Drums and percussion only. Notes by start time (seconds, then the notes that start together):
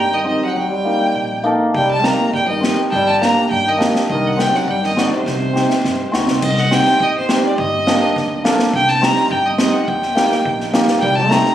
1.75 kick
2.04 snare
2.34 kick
2.63 snare
2.92 kick
3.22 snare
3.51 kick
3.81 snare
3.96 snare
4.10 kick
4.39 snare
4.55 snare
4.68 kick
4.84 snare
4.97 snare
5.26 kick, snare
5.56 snare
5.70 snare
5.84 kick, snare
6.13 snare
6.28 snare
6.42 kick, crash
6.57 snare
6.71 snare
6.86 snare
7.00 kick
7.29 snare
7.58 kick
7.87 snare
8.16 kick, snare
8.45 snare
8.59 snare
8.73 kick
8.88 snare
9.03 snare
9.16 snare
9.31 kick
9.59 snare
9.88 kick
10.02 snare
10.17 snare
10.31 snare
10.46 kick
10.60 snare
10.74 snare
10.88 snare
11.02 kick
11.31 snare
11.45 snare